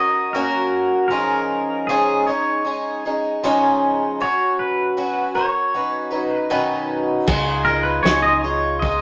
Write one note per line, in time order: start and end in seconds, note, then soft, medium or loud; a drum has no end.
0.00 0.34 C#4 soft
0.00 0.35 F#4 soft
0.00 0.34 A#4 soft
0.00 0.36 D#5 medium
0.33 1.10 F#3 medium
0.33 1.10 A#3 medium
0.33 1.11 C#4 medium
0.33 1.11 F#4 medium
0.33 1.07 A#4 medium
0.33 1.12 A#4 medium
1.08 1.88 C#3 medium
1.08 1.88 F3 medium
1.08 1.88 G#3 medium
1.08 1.89 C#4 medium
1.08 1.89 D#4 medium
1.08 1.89 A#4 medium
1.12 1.89 G#4 medium
1.87 2.28 C#3 medium
1.87 2.28 F3 medium
1.87 2.28 G#3 medium
1.87 2.27 C#4 medium
1.87 2.26 D#4 medium
1.87 2.28 G#4 medium
1.87 2.26 G#4 medium
2.27 2.63 G#3 soft
2.27 2.65 C#4 soft
2.27 2.65 D#4 soft
2.27 2.66 G#4 soft
2.27 3.00 C#5 medium
2.65 3.04 G#3 soft
2.65 3.04 C#4 soft
2.65 3.05 D#4 soft
2.65 3.04 G#4 soft
3.05 3.43 G#3 soft
3.05 3.44 C#4 soft
3.05 3.44 D#4 soft
3.05 3.43 G#4 soft
3.43 4.20 C#3 medium
3.43 4.20 F3 medium
3.43 4.20 G#3 medium
3.43 4.20 C#4 medium
3.43 4.21 D#4 medium
3.43 4.21 G#4 medium
4.20 4.96 F#3 medium
4.20 4.96 C#4 medium
4.20 4.97 F#4 medium
4.20 4.59 C#5 medium
4.59 5.32 B4 medium
4.97 5.36 F#3 medium
4.97 5.36 C#4 medium
4.97 5.35 F#4 medium
5.35 5.73 C#4 soft
5.35 5.74 F#4 soft
5.35 5.74 A#4 soft
5.35 6.35 C#5 medium
5.74 6.12 F#3 soft
5.74 6.11 C#4 soft
5.74 6.10 D#4 soft
5.74 6.09 B4 soft
6.11 6.50 F#3 soft
6.11 6.49 C#4 soft
6.11 6.50 D#4 soft
6.11 6.50 B4 soft
6.35 6.86 B4 medium
6.50 7.28 B2 medium
6.50 7.26 D#3 medium
6.50 7.27 F#3 medium
6.50 7.27 C#4 medium
6.50 7.26 D#4 medium
6.50 7.28 B4 medium
7.27 8.01 C#2 medium
7.27 7.66 C#3 medium
7.27 7.66 G#3 medium
7.27 7.66 D#4 medium
7.27 7.66 F4 medium
7.27 7.65 G#4 medium
7.27 kick medium
7.27 crash medium
7.65 8.05 F4 soft
7.65 8.05 G#4 soft
7.65 7.83 A#4 medium
7.69 8.05 D#4 soft
7.83 8.04 B4 medium
8.03 9.01 C#2 medium
8.03 8.44 C#3 medium
8.03 8.44 G#3 medium
8.03 8.44 D#4 medium
8.03 8.43 F4 medium
8.03 8.43 G#4 medium
8.03 8.22 C#5 medium
8.03 snare medium
8.22 8.40 D#5 medium
8.41 8.82 G#4 soft
8.41 8.78 C#5 medium
8.45 8.82 D#4 soft
8.45 8.83 F4 soft
8.79 9.01 G#3 soft
8.79 9.01 D#4 medium
8.79 9.01 D#5 medium
8.79 kick medium
8.84 9.01 F4 medium
8.84 9.01 G#4 medium